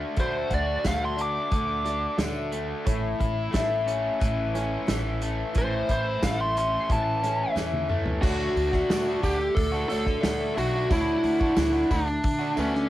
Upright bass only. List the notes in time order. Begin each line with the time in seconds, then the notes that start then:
0.17 D2
0.50 D2
0.84 D2
1.51 D2
2.18 D2
2.86 A1
3.20 A1
3.54 A1
4.21 A1
4.88 A1
5.55 A1
5.89 A1
6.22 A1
6.89 A1
7.56 E2
8.23 D2
8.56 D2
8.89 D2
9.23 D2
9.56 D2
9.91 D2
10.23 D2
10.57 B1
10.90 D2
11.23 D2
11.57 D2
11.90 D2
12.24 D3
12.57 D2